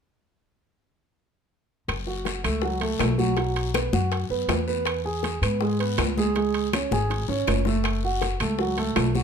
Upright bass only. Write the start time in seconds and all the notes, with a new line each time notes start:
1.88 F#1
2.44 C#2
3.00 B1
3.93 F#2
4.30 F#2
4.48 E2
5.42 G#2
5.98 C#2
6.91 G#1
7.29 G#1
7.48 F#1
8.40 C#2
8.96 B1